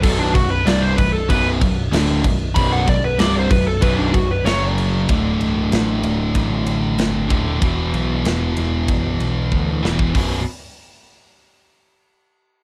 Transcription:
<<
  \new Staff \with { instrumentName = "Lead electric guitar" } { \time 4/4 \key b \phrygian \tempo 4 = 95 a'16 d'16 fis'16 b'16 d''16 c''16 b'16 a'16 b'8 r4. | b''16 fis''16 d''16 b'16 d''16 c''16 b'16 a'16 b'16 d'16 fis'16 b'16 cis''8 r8 | r1 | r1 |
r1 | }
  \new Staff \with { instrumentName = "Distorted electric guitar" } { \clef bass \time 4/4 \key b \phrygian <b,, fis, b,>8 <b,, fis,>8 <c, g, c>8 <b,, fis,>8 <b,, fis, b,>8 <b,, fis,>8 <d, a, d>8 <b,, fis,>8 | <b,, fis, b,>8 <b,, fis,>8 <c, g, c>8 <b,, fis,>8 <b,, fis, b,>8 <b,, fis,>8 <fis, cis fis>4 | <d, a, d>2.~ <d, a, d>8 <d, a, d>8 | <e, b, e>2.~ <e, b, e>8 <e, b, e>8 |
<b,, fis, b,>8 r2. r8 | }
  \new Staff \with { instrumentName = "Distorted electric guitar" } { \clef bass \time 4/4 \key b \phrygian <b,, fis, b,>8 <b,, fis,>8 <c, g, c>8 <b,, fis,>8 <b,, fis, b,>8 <b,, fis,>8 <d, a, d>8 <b,, fis,>8 | <b,, fis, b,>8 <b,, fis,>8 <c, g, c>8 <b,, fis,>8 <b,, fis, b,>8 <b,, fis,>8 <fis, cis fis>4 | <d, a, d>2.~ <d, a, d>8 <d, a, d>8 | <e, b, e>2.~ <e, b, e>8 <e, b, e>8 |
<b,, fis, b,>8 r2. r8 | }
  \new Staff \with { instrumentName = "Overdriven electric guitar" } { \clef bass \time 4/4 \key b \phrygian <b,, fis, b,>8 <b,, fis,>8 <c, g, c>8 <b,, fis,>8 <b,, fis, b,>8 <b,, fis,>8 <d, a, d>8 <b,, fis,>8 | <b,, fis, b,>8 <b,, fis,>8 <c, g, c>8 <b,, fis,>8 <b,, fis, b,>8 <b,, fis,>8 <fis, cis fis>4 | r1 | r1 |
r1 | }
  \new Staff \with { instrumentName = "Picked electric bass" } { \clef bass \time 4/4 \key b \phrygian b,,,8 b,,,8 c,,8 b,,,8 b,,,8 b,,,8 d,,8 b,,,8 | b,,,8 b,,,8 c,,8 b,,,8 b,,,8 b,,,8 fis,,4 | d,,8 c,,8 a,,8 d,,8 a,,4 g,,8 dis,,8 | e,,8 b,,8 e,,8 e,,8 b,,,8 b,,8 d,8 e,,8 |
b,,,8 r2. r8 | }
  \new DrumStaff \with { instrumentName = "Drums" } \drummode { \time 4/4 <cymc bd>8 <cymc bd>8 <cymc sn>8 <cymc bd>8 <cymc bd>8 <cymc bd>8 <cymc sn>8 <cymc bd>8 | <cymc bd>8 <cymc bd>8 <cymc sn>8 <cymc bd>8 <cymc bd>8 <cymc bd>8 <cymc sn>8 cymc8 | <bd cymr>8 cymr8 <cymr sn>8 cymr8 <bd cymr>8 cymr8 <cymr sn>8 <bd cymr>8 | <bd cymr>8 cymr8 <cymr sn>8 cymr8 <bd cymr>8 cymr8 bd8 sn16 bd16 |
<hho bd>4 r4 r4 r4 | }
>>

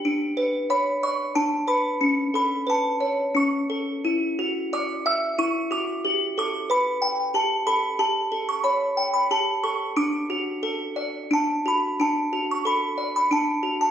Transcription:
\new Staff \with { instrumentName = "Music box" } { \time 3/4 \key d \major \tempo 4 = 91 << { r4 b''8 cis'''8 a''8 b''8~ | b''8 b''8 a''4 cis'''8. r16 | r4 d'''8 e'''8 cis'''8 d'''8~ | d'''8 d'''8 b''4 a''8 b''8 |
a''8. cis'''16 b''8. b''16 a''8 cis'''8 | d'''2 a''8 b''8 | a''8. cis'''16 b''8. b''16 a''8. a''16 | } \\ { d'8 b'8 cis''8 d''8 d'8 b'8 | cis'8 a'8 b'8 cis''8 cis'8 a'8 | e'8 fis'8 d''8 e''8 e'8 fis'8 | g'8 a'8 b'8 g''8 g'8 a'8 |
g'8 a'8 cis''8 g''8 g'8 a'8 | d'8 fis'8 a'8 d''8 d'8 fis'8 | d'8 fis'8 a'8 d''8 d'8 fis'8 | } >> }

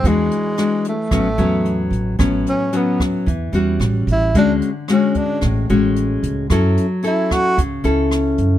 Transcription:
<<
  \new Staff \with { instrumentName = "Tenor saxophone" } { \time 4/4 \key a \major \tempo 4 = 111 gis4. a2 r8 | r8 cis'8 b8 r2 e'8 | d'8 r8 cis'8 d'8 r2 | r4 e'8 fis'8 r2 | }
  \new Staff \with { instrumentName = "Nylon-string guitar" } { \time 4/4 \key a \major << { <gis d' fis'>4 <gis d' fis'>8 r8 <fis b cis'>8 <fis b cis'>4. | <fis b cis'>4 <fis b cis'>4 r8 <g cis' fis'>4. | <gis cis' fis'>8 r8 <gis cis' fis'>4. <gis cis' fis'>4. | <cis' e' a'>8 r8 <cis' e' a'>4 r8 <cis' e' a'>4. | } \\ { e2 a,2 | a,2 e4 r4 | d2 a,2 | fis2 cis2 | } >> }
  \new Staff \with { instrumentName = "Upright bass" } { \clef bass \time 4/4 \key a \major e,8 r4. a,,8 e,4 a,,8 | a,,8 r4. e,8 e,8 a,,8 a,,8 | d,8 r4. a,,8 a,,4 cis,8 | fis,8 r4. cis,8 cis,4 fis,8 | }
  \new DrumStaff \with { instrumentName = "Drums" } \drummode { \time 4/4 <hh bd>8 hh8 <hh ss>8 hh8 <hh bd ss>8 hh8 hh8 hh8 | <hh bd ss>8 hh8 hh8 <hh bd ss>8 <hh bd>8 hh8 <hh ss>8 hh8 | <hh bd>8 hh8 <hh ss>8 <hh bd>8 <hh bd ss>8 hh8 hh8 hh8 | <hh bd ss>8 hh8 hh8 <hh bd ss>8 <hh bd>8 hh8 <hh ss>8 hh8 | }
>>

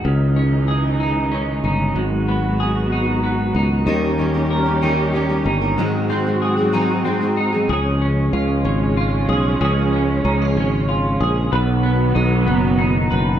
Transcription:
<<
  \new Staff \with { instrumentName = "Clean electric guitar" } { \time 6/8 \key cis \dorian \tempo 4. = 63 cis8 cis'8 gis'8 dis'8 cis'8 dis'8 | gis,8 b8 gis'8 dis'8 b8 dis'8 | dis8 cis'8 ais'8 dis'8 cis'8 dis'8 | gis,8 bis8 gis'8 dis'8 bis8 dis'8 |
\key cis \mixolydian <cis gis'>8 cis'8 eis'8 cis'8 eis'8 gis'8 | <cis gis'>8 cis'8 dis'16 eis'16 cis'8 eis'8 gis'8 | <b, b'>8 b8 dis'8 b8 dis'8 b'8 | }
  \new Staff \with { instrumentName = "Steel-string acoustic guitar" } { \time 6/8 \key cis \dorian r2. | r2. | <dis g cis' dis' ais'>8 <g cis' dis' ais'>16 <cis' dis' ais'>8 <cis' dis' ais'>16 <dis g cis' dis' ais'>8 <g cis' dis' ais'>16 <cis' dis' ais'>8 <cis' dis' ais'>16 | <gis, dis fis bis dis' gis'>8 <fis bis dis' gis'>16 <fis bis dis' gis'>8 <fis bis dis' gis'>16 <gis, dis fis bis dis' gis'>8 <fis bis dis' gis'>16 <fis bis dis' gis'>8 <fis bis dis' gis'>16 |
\key cis \mixolydian r2. | r2. | r2. | }
  \new Staff \with { instrumentName = "String section" } { \clef bass \time 6/8 \key cis \dorian << { <dis e gis dis'>2. | <fis b fis'>2. | <g ais cis' g'>2. | <fis gis bis fis'>2. |
\key cis \mixolydian <eis gis cis'>2.~ | <eis gis cis'>2. | <dis fis b>2. | } \\ { cis2. | dis2.~ | dis2.~ | dis2. |
r2. | r2. | r2. | } >> }
  \new Staff \with { instrumentName = "Fretless electric bass" } { \clef bass \time 6/8 \key cis \dorian cis,2~ cis,8 g,,8 | gis,,2~ gis,,8 cis,8 | dis,2~ dis,8 g,,8 | r2. |
\key cis \mixolydian cis,4 cis,8 gis,,4 b,,8 | cis,4 cis,8 gis,,4 ais,,8 | b,,4 b,,8 fis,,4 fis,,8 | }
>>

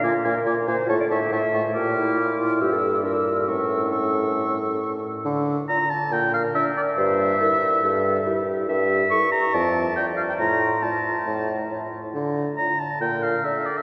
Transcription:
<<
  \new Staff \with { instrumentName = "Flute" } { \time 4/4 \key d \minor \tempo 4 = 139 d'''8 d'''8 d'''8 d'''8 cis'''8 cis'''8 cis'''8 cis'''8 | f'''2 e'''4 e'''4 | e'''4 e'''2~ e'''8 r8 | r4 d''4 r4 d''4 |
r4 bes'4 r4 bes'4 | r4 a'4 r4 d''4 | r4 d''4 r4 cis''4 | r4 d''4 r4 d''4 | }
  \new Staff \with { instrumentName = "Oboe" } { \time 4/4 \key d \minor aes''8 aes''8 aes''8 aes''8 a''8 a''8 a''8 a''8 | d'''2 e'''4 e'''4 | cis'''4 cis'''2~ cis'''8 r8 | r4 bes''8 a''8 g''8 f''8 e''8 d''16 e''16~ |
e''2.~ e''8 r8 | r4 cis'''8 bes''8 a''4 g''8 f''16 g''16 | bes''4 a''2 r4 | r4 bes''8 a''8 g''8 f''8 e''8 d''16 e''16 | }
  \new Staff \with { instrumentName = "Clarinet" } { \time 4/4 \key d \minor r8 bes'4 c''8 cis''16 d''16 e''8 e''4 | r8 e'4 f'8 g'16 a'8. bes'4 | bes'4 a'2 r4 | r2 bes'4 d''4 |
c''4 bes'4 a'4 g'4 | e''2 d''2 | f'2.~ f'8 r8 | r2 bes'4 a'4 | }
  \new Staff \with { instrumentName = "French horn" } { \time 4/4 \key d \minor f'2 a'2 | g'4 f'4 e'4 d'4 | cis'2.~ cis'8 r8 | r4 f'4 r4 d'4 |
r4 e'4 r4 e'4 | r4 e'4 r4 f'4 | r4 f'4 r4 e'4 | r4 f'4 r4 d'4 | }
  \new Staff \with { instrumentName = "Bassoon" } { \clef bass \time 4/4 \key d \minor bes,8 bes,8 bes,8 bes,8 a,8 a,8 a,8 a,8 | bes,2 g,2 | a,2.~ a,8 r8 | d4 r4 bes,4 r4 |
g,4 r4 g,4 r4 | g,4 r4 f,4 r4 | a,4 r4 a,4 r4 | d4 r4 bes,4 r4 | }
>>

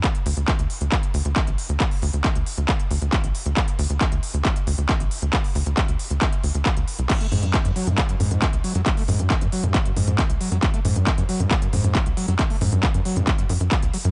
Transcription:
<<
  \new Staff \with { instrumentName = "Acid bass" } { \clef bass \time 4/4 \key d \lydian \tempo 4 = 136 r1 | r1 | r1 | r1 |
fis,16 a16 gis,16 fis,16 cis16 fis,16 fis16 fis,16 cis16 fis,16 gis,8 fis,16 r16 fis16 fis16 | fis,16 a16 gis,16 fis,16 cis16 fis,16 fis16 fis,16 cis16 fis,16 gis,8 fis,16 r16 fis16 fis16 | fis,16 a16 gis,16 fis,16 cis16 fis,16 fis16 fis,16 cis16 fis,16 gis,8 fis,16 r16 fis16 fis16 | fis,16 a16 gis,16 fis,16 cis16 fis,16 fis16 fis,16 cis16 fis,16 eis,16 r16 fis16 fis,,16 fis16 fis,16 | }
  \new Staff \with { instrumentName = "Analog synth bass" } { \clef bass \time 4/4 \key d \lydian r8 d,16 d,16 r16 d,16 r16 d,16 r8 d,16 d,16 r16 a,,16 r16 d,16 | r8 d,16 d,16 r16 d,16 r16 d,16 r8 d,16 d,16 r16 a,,16 r16 d,16 | r8 d,16 d,16 r16 d,16 r16 d,16 r8 d,16 d,16 r16 a,,16 r16 d,16 | r8 d,16 d,16 r16 d,16 r16 d,16 r8 d,16 d,16 r16 d,16 r16 bis,,16 |
r8 fis,16 fis,16 r16 fis,16 r16 fis,16 r8 fis,16 fis,16 r16 cis,16 r16 fis,16 | r8 fis,16 fis,16 r16 fis,16 r16 fis,16 r8 fis,16 fis,16 r16 cis,16 r16 fis,16 | r8 fis,16 fis,16 r16 fis,16 r16 fis,16 r8 fis,16 fis,16 r16 cis,16 r16 fis,16 | r8 fis,16 fis,16 r16 fis,16 r16 fis,16 r8 fis,16 fis,16 r16 cis,16 r16 fis,16 | }
  \new DrumStaff \with { instrumentName = "Drums" } \drummode { \time 4/4 <hc hh bd>16 hh16 hho16 hh16 <hc hh bd>16 hh16 hho16 hh16 <hc hh bd>16 hh16 hho16 hh16 <hc hh bd>16 hh16 hho16 hh16 | <hc hh bd>16 hho16 hho16 hh16 <hc hh bd>16 hh16 hho16 hh16 <hc hh bd>16 hh16 hho16 hh16 <hc hh bd>16 hh16 hho16 hh16 | <hc hh bd>16 hh16 hho16 hh16 <hc hh bd>16 hh16 hho16 hh16 <hc hh bd>16 hh16 hho16 hh16 <hc hh bd>16 hh16 hho16 hh16 | <hc hh bd>16 hho16 hho16 hh16 <hc hh bd>16 hh16 hho16 hh16 <hc hh bd>16 hh16 hho16 hh16 <hc hh bd>16 hh16 hho16 hh16 |
<hc cymc hh bd>16 hh16 hho16 hh16 <hc hh bd>16 hh16 hho16 hh16 <hc hh bd>16 hh16 hho16 hh16 <hc hh bd>16 hh16 hho16 hh16 | <hc hh bd>16 hho16 hho16 hh16 <hc hh bd>16 hh16 hho16 hh16 <hc hh bd>16 hh16 hho16 hh16 <hc hh bd>16 hh16 hho16 hh16 | <hc hh bd>16 hh16 hho16 hh16 <hc hh bd>16 hh16 hho16 hh16 <hc hh bd>16 hh16 hho16 hh16 <hc hh bd>16 hh16 hho16 hh16 | <hc hh bd>16 hho16 hho16 hh16 <hc hh bd>16 hh16 hho16 hh16 <hc hh bd>16 hh16 hho16 hh16 <hc hh bd>16 hh16 hho16 hh16 | }
>>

